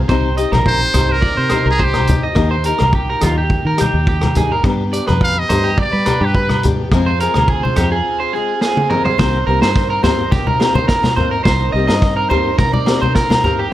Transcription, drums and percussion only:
0.09 kick, cross-stick, low agogo
0.37 closed hi-hat
0.53 cross-stick, high conga, low agogo
0.66 kick
0.94 cross-stick, closed hi-hat, low conga, low agogo
1.22 kick
1.49 cross-stick, closed hi-hat, high conga, low agogo
1.79 kick
1.94 cross-stick, high conga, low agogo
2.07 closed hi-hat, high conga, low conga
2.35 kick, cross-stick, low agogo
2.64 closed hi-hat
2.78 cross-stick, high conga, low agogo
2.93 kick
3.21 cross-stick, closed hi-hat, low conga, low agogo
3.50 kick
3.78 cross-stick, closed hi-hat, high conga, low agogo
4.07 kick
4.21 cross-stick, high conga, low agogo
4.35 closed hi-hat, high conga, low conga
4.64 kick, cross-stick, low agogo
4.93 closed hi-hat
5.07 cross-stick, high conga, low agogo
5.21 kick
5.49 cross-stick, closed hi-hat, low conga, low agogo
5.78 kick
6.06 cross-stick, closed hi-hat, high conga, low agogo
6.35 kick
6.49 cross-stick, high conga, low agogo
6.63 closed hi-hat, high conga, low conga
6.92 kick, cross-stick, low agogo
7.20 closed hi-hat
7.34 cross-stick, high conga, low agogo
7.48 kick
7.65 high conga
7.76 cross-stick, closed hi-hat, low conga, low agogo
8.61 snare
8.77 high tom
8.90 mid tom
9.05 floor tom
9.19 kick, snare, low agogo
9.62 snare, low agogo
9.75 kick, snare
10.04 snare, low conga, low agogo
10.32 kick, snare, high conga
10.47 high conga
10.60 snare, low agogo
10.75 high conga
10.88 kick, snare
11.03 snare, high conga, low agogo
11.17 low conga
11.45 kick, snare, low agogo
11.88 snare, low agogo
12.02 kick, snare
12.30 low conga, low agogo
12.58 kick, snare, high conga
12.74 high conga
12.86 snare, low agogo
13.03 high conga
13.15 kick, snare
13.30 snare, high conga, low agogo
13.44 low conga

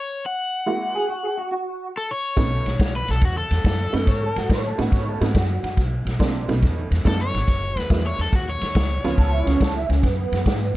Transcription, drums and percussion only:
2.37 kick, snare, ride
2.66 snare, ride
2.79 kick, snare, ride
3.08 snare, ride
3.22 kick, snare, ride
3.51 snare, ride
3.65 kick, snare, ride
3.94 snare, ride
4.07 kick, snare, ride
4.36 snare, ride
4.50 kick, snare, ride
4.79 snare, ride
4.92 kick, snare, ride
5.21 snare, ride
5.35 kick, snare, ride
5.64 snare, ride
5.77 kick, snare, ride
6.07 snare, ride
6.20 kick, snare, ride
6.49 snare, ride
6.62 kick, snare, ride
6.91 snare, ride
7.05 kick, snare, ride
7.34 snare, ride
7.48 kick, snare, ride
7.77 snare, ride
7.90 kick, snare, ride
8.19 snare, ride
8.33 kick, snare, ride
8.61 snare, ride
8.75 kick, snare, ride
9.04 snare, ride
9.18 kick, snare, ride
9.47 snare, ride
9.61 kick, snare, ride
9.90 snare, ride
10.03 kick, snare, ride
10.32 snare, ride
10.46 kick, snare, ride

